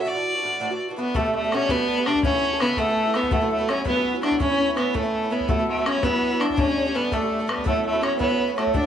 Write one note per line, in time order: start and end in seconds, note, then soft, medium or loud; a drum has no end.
0.00 0.09 E5 medium
0.05 0.16 A2 medium
0.05 0.16 E3 medium
0.05 0.15 D4 medium
0.05 0.14 F#4 medium
0.05 0.81 D5 medium
0.15 0.35 E3 soft
0.15 0.35 D4 soft
0.15 0.34 F#4 soft
0.35 0.43 E3 soft
0.35 0.43 D4 soft
0.35 0.44 F#4 medium
0.43 0.58 A2 soft
0.43 0.60 E3 medium
0.43 0.60 D4 medium
0.43 0.60 F#4 medium
0.60 0.70 A2 medium
0.60 0.71 E3 medium
0.60 0.70 D4 medium
0.60 0.69 F#4 medium
0.70 0.90 E3 soft
0.70 0.89 D4 soft
0.70 0.87 F#4 soft
0.89 0.97 E3 soft
0.89 0.97 D4 medium
0.89 0.97 F#4 medium
0.96 1.14 A2 medium
0.96 1.15 E3 medium
0.96 1.69 B3 medium
0.96 1.17 B3 medium
0.96 1.15 D4 medium
0.96 1.15 F#4 medium
0.96 1.15 B4 medium
1.14 1.25 B2 medium
1.14 1.25 G3 medium
1.14 1.33 A3 medium
1.14 1.25 A3 medium
1.14 1.35 A3 medium
1.14 1.23 D4 medium
1.14 1.33 A4 medium
1.14 bodhran medium
1.25 1.44 G3 soft
1.25 1.43 A3 soft
1.25 1.42 D4 soft
1.34 2.77 A3 medium
1.34 1.55 A3 medium
1.34 1.43 A4 medium
1.44 1.52 G3 soft
1.44 1.52 A3 soft
1.44 1.52 D4 medium
1.52 1.68 B2 medium
1.52 1.69 G3 medium
1.52 1.69 A3 medium
1.52 2.11 C#4 medium
1.52 1.72 C#4 loud
1.52 1.70 D4 medium
1.52 1.70 C#5 medium
1.52 bodhran medium
1.69 1.79 B2 medium
1.69 1.79 G3 medium
1.69 1.78 A3 medium
1.69 1.82 B3 medium
1.69 2.08 B3 loud
1.69 1.78 D4 medium
1.69 2.08 B4 medium
1.69 bodhran medium
1.79 1.98 G3 soft
1.79 1.98 A3 soft
1.79 1.95 B3 medium
1.79 1.97 D4 soft
1.95 2.07 A3 soft
1.95 2.58 B3 medium
1.95 2.06 D4 soft
2.00 2.06 G3 soft
2.05 2.23 B2 soft
2.05 2.24 G3 medium
2.05 2.24 A3 medium
2.05 2.28 D4 medium
2.05 2.23 D4 medium
2.05 2.24 D4 medium
2.05 2.17 D5 medium
2.05 bodhran medium
2.15 2.24 B4 medium
2.15 bodhran soft
2.22 2.33 C#3 medium
2.22 2.34 B3 medium
2.22 3.69 C#4 medium
2.22 2.63 C#4 loud
2.22 2.34 E4 medium
2.22 2.33 A4 medium
2.22 2.58 C#5 medium
2.22 bodhran medium
2.34 2.53 B3 soft
2.34 2.53 E4 soft
2.34 2.52 A4 soft
2.53 2.60 B3 soft
2.53 2.61 E4 soft
2.53 2.61 A4 medium
2.59 2.77 C#3 medium
2.59 3.15 B3 medium
2.59 2.79 B3 loud
2.59 2.77 B3 medium
2.59 2.77 E4 medium
2.59 2.78 B4 medium
2.59 bodhran medium
2.63 2.78 A4 medium
2.77 2.88 C#3 medium
2.77 3.32 A3 medium
2.77 3.17 A3 loud
2.77 2.88 B3 medium
2.77 2.88 E4 medium
2.77 3.31 A4 medium
2.77 2.87 A4 medium
2.77 bodhran medium
2.88 3.07 B3 soft
2.88 3.06 E4 soft
2.88 3.04 A4 soft
3.06 3.13 B3 soft
3.06 3.14 E4 soft
3.06 3.14 A4 soft
3.13 3.31 C#3 medium
3.13 3.31 B3 medium
3.13 3.86 B3 medium
3.13 3.34 B3 medium
3.13 3.31 E4 medium
3.13 3.32 A4 medium
3.13 bodhran medium
3.23 bodhran soft
3.31 3.41 G2 medium
3.31 3.42 F#3 medium
3.31 3.51 A3 medium
3.31 3.52 A3 medium
3.31 3.41 B3 medium
3.31 3.40 E4 medium
3.31 3.70 A4 medium
3.31 bodhran medium
3.41 3.60 F#3 soft
3.41 3.58 B3 soft
3.41 3.57 E4 soft
3.51 4.95 A3 medium
3.51 3.71 A3 medium
3.58 3.68 F#3 soft
3.58 3.68 B3 soft
3.58 3.68 E4 medium
3.68 3.83 G2 medium
3.68 3.84 F#3 medium
3.68 3.85 B3 medium
3.68 3.86 C#4 loud
3.68 4.30 C#4 medium
3.68 3.85 E4 medium
3.68 3.85 C#5 medium
3.68 bodhran medium
3.85 3.95 G2 medium
3.85 3.96 F#3 medium
3.85 3.95 B3 medium
3.85 4.77 B3 medium
3.85 4.21 B3 medium
3.85 3.94 E4 medium
3.85 4.20 B4 medium
3.85 bodhran medium
3.95 4.15 F#3 soft
3.95 4.13 B3 soft
3.95 4.12 E4 soft
4.13 4.22 F#3 soft
4.13 4.22 B3 soft
4.13 4.22 E4 soft
4.22 4.39 G2 medium
4.22 4.40 F#3 medium
4.22 4.40 B3 medium
4.22 4.39 D4 medium
4.22 4.46 D4 medium
4.22 4.40 E4 medium
4.22 4.41 D5 medium
4.22 bodhran medium
4.31 bodhran soft
4.40 4.50 A2 medium
4.40 4.50 E3 medium
4.40 4.49 C#4 medium
4.40 4.75 C#4 loud
4.40 4.61 C#4 medium
4.40 4.49 E4 medium
4.40 4.78 C#5 medium
4.40 bodhran medium
4.50 4.70 E3 soft
4.50 4.68 C#4 soft
4.50 4.67 E4 medium
4.61 5.86 C#4 medium
4.69 4.76 E3 soft
4.69 4.77 C#4 soft
4.69 4.77 E4 medium
4.76 4.92 A2 medium
4.76 4.93 E3 medium
4.76 4.96 B3 medium
4.76 5.31 B3 medium
4.76 4.93 C#4 medium
4.76 4.93 E4 medium
4.76 4.95 B4 medium
4.76 bodhran medium
4.94 5.04 A2 medium
4.94 5.04 E3 medium
4.94 5.33 A3 medium
4.94 5.49 A3 medium
4.94 5.03 C#4 medium
4.94 5.02 E4 medium
4.94 5.12 A4 medium
4.94 bodhran medium
5.03 5.23 E3 soft
5.03 5.23 C#4 soft
5.03 5.22 E4 medium
5.14 5.32 A4 medium
5.23 5.30 E3 soft
5.23 5.30 C#4 soft
5.23 5.31 E4 soft
5.30 5.47 A2 soft
5.30 5.48 E3 medium
5.30 5.50 B3 medium
5.30 6.04 B3 medium
5.30 5.48 C#4 medium
5.30 5.48 E4 medium
5.30 5.47 B4 medium
5.40 bodhran soft
5.48 5.58 G2 medium
5.48 5.59 F#3 medium
5.48 5.68 A3 medium
5.48 5.69 A3 medium
5.48 5.58 B3 medium
5.48 5.57 E4 medium
5.48 5.87 A4 medium
5.48 bodhran medium
5.58 5.78 F#3 soft
5.58 5.77 B3 soft
5.58 5.76 E4 soft
5.69 5.88 A3 medium
5.69 7.14 A3 medium
5.78 5.86 F#3 soft
5.78 5.86 B3 soft
5.78 5.86 E4 soft
5.86 6.02 G2 medium
5.86 6.02 F#3 medium
5.86 6.03 B3 medium
5.86 6.05 C#4 loud
5.86 6.47 C#4 medium
5.86 6.04 E4 medium
5.86 5.95 C#5 medium
5.86 bodhran medium
5.97 6.03 C#5 medium
6.03 6.13 G2 medium
6.03 6.13 F#3 medium
6.03 6.42 B3 loud
6.03 6.13 B3 medium
6.03 6.96 B3 medium
6.03 6.11 E4 medium
6.03 6.41 B4 medium
6.03 bodhran medium
6.13 6.32 F#3 soft
6.13 6.30 B3 soft
6.13 6.30 E4 soft
6.31 6.40 F#3 soft
6.31 6.40 B3 soft
6.31 6.40 E4 soft
6.40 6.56 G2 medium
6.40 6.57 F#3 medium
6.40 6.57 B3 medium
6.40 6.50 D4 medium
6.40 6.64 D4 medium
6.40 6.57 E4 medium
6.40 6.56 D5 medium
6.40 bodhran medium
6.50 6.60 D4 medium
6.50 bodhran soft
6.56 6.67 A2 medium
6.56 6.67 G3 medium
6.56 6.67 A3 medium
6.56 6.97 C#4 medium
6.56 8.04 C#4 medium
6.56 6.65 D4 medium
6.56 6.92 C#5 medium
6.56 bodhran medium
6.67 6.87 G3 soft
6.67 6.85 A3 soft
6.67 6.84 D4 soft
6.85 6.94 G3 soft
6.85 6.94 A3 medium
6.85 6.94 D4 medium
6.94 7.11 A2 medium
6.94 7.11 G3 medium
6.94 7.11 A3 medium
6.94 7.15 B3 medium
6.94 7.50 B3 medium
6.94 7.12 D4 medium
6.94 7.02 B4 medium
7.11 7.22 A2 medium
7.11 7.22 G3 medium
7.11 7.21 A3 medium
7.11 7.51 A3 medium
7.11 7.65 A3 medium
7.11 7.20 D4 medium
7.11 7.50 A4 medium
7.11 bodhran medium
7.21 7.40 G3 soft
7.21 7.39 A3 soft
7.21 7.38 D4 soft
7.39 7.47 G3 soft
7.39 7.47 A3 medium
7.39 7.48 D4 medium
7.47 7.63 A2 medium
7.47 7.64 G3 medium
7.47 7.65 A3 medium
7.47 7.66 B3 medium
7.47 8.19 B3 medium
7.47 7.66 D4 medium
7.47 7.64 B4 medium
7.47 bodhran medium
7.58 bodhran soft
7.64 7.75 A2 medium
7.64 7.75 F#3 medium
7.64 7.86 A3 medium
7.64 7.85 A3 medium
7.64 7.74 C#4 medium
7.64 7.73 E4 medium
7.64 7.84 A4 medium
7.64 bodhran medium
7.74 7.93 F#3 soft
7.74 7.92 C#4 soft
7.74 7.91 E4 soft
7.86 8.03 A3 medium
7.86 8.57 A3 medium
7.86 8.03 A4 medium
7.92 8.00 F#3 soft
7.92 8.02 C#4 medium
7.92 8.02 E4 medium
8.01 8.17 A2 medium
8.01 8.18 F#3 medium
8.01 8.19 C#4 loud
8.01 8.18 C#4 medium
8.01 8.81 C#4 medium
8.01 8.19 E4 medium
8.01 8.19 C#5 medium
8.01 bodhran medium
8.19 8.30 A2 medium
8.19 8.29 F#3 medium
8.19 8.54 B3 medium
8.19 8.86 B3 medium
8.19 8.28 C#4 medium
8.19 8.28 E4 medium
8.19 8.38 B4 medium
8.19 bodhran medium
8.29 8.49 F#3 soft
8.29 8.48 C#4 soft
8.29 8.46 E4 soft
8.40 8.56 B4 medium
8.48 8.56 F#3 soft
8.48 8.57 C#4 soft
8.48 8.57 E4 medium
8.56 8.72 A2 medium
8.56 8.73 F#3 medium
8.56 8.76 A3 medium
8.56 8.86 A3 soft
8.56 8.74 C#4 medium
8.56 8.73 E4 medium
8.56 8.75 A4 medium
8.56 bodhran medium
8.67 bodhran soft
8.74 8.84 A2 medium
8.74 8.84 F#3 medium
8.74 8.86 D4 medium
8.74 8.84 D4 medium
8.74 8.86 D4 medium
8.74 8.82 E4 medium
8.74 8.86 D5 medium
8.74 bodhran medium